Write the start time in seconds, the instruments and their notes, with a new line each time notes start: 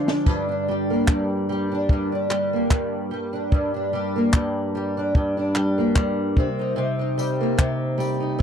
Already playing: twelve-string acoustic guitar D3 F3 G#3
0.08 twelve-string acoustic guitar D4, snare
0.26 twelve-string acoustic guitar G2, kick, splash
0.49 twelve-string acoustic guitar D4
0.68 twelve-string acoustic guitar G3
0.90 twelve-string acoustic guitar A#3
1.08 twelve-string acoustic guitar G2, kick, clap
1.49 twelve-string acoustic guitar G3
1.72 twelve-string acoustic guitar D4
1.89 twelve-string acoustic guitar G2, kick
2.12 twelve-string acoustic guitar D4
2.30 twelve-string acoustic guitar G3, clap
2.53 twelve-string acoustic guitar A#3
2.71 twelve-string acoustic guitar G2, kick, clap
3.11 twelve-string acoustic guitar G3
3.33 twelve-string acoustic guitar D4
3.52 twelve-string acoustic guitar G2, kick
3.74 twelve-string acoustic guitar D4
3.93 twelve-string acoustic guitar G3
4.16 twelve-string acoustic guitar A#3
4.33 twelve-string acoustic guitar G2, kick, clap
4.75 twelve-string acoustic guitar G3
4.97 twelve-string acoustic guitar D4
5.15 twelve-string acoustic guitar G2, kick
5.37 twelve-string acoustic guitar D4
5.55 twelve-string acoustic guitar G3, clap
5.78 twelve-string acoustic guitar A#3
5.96 twelve-string acoustic guitar G2, kick, clap
6.37 twelve-string acoustic guitar C3, kick
6.59 twelve-string acoustic guitar D#4
6.76 twelve-string acoustic guitar C3
6.99 twelve-string acoustic guitar D#4
7.18 twelve-string acoustic guitar G3, tambourine
7.41 twelve-string acoustic guitar A#3
7.58 twelve-string acoustic guitar C3, kick, clap
7.98 twelve-string acoustic guitar G3, tambourine
8.20 twelve-string acoustic guitar D#4
8.39 twelve-string acoustic guitar C3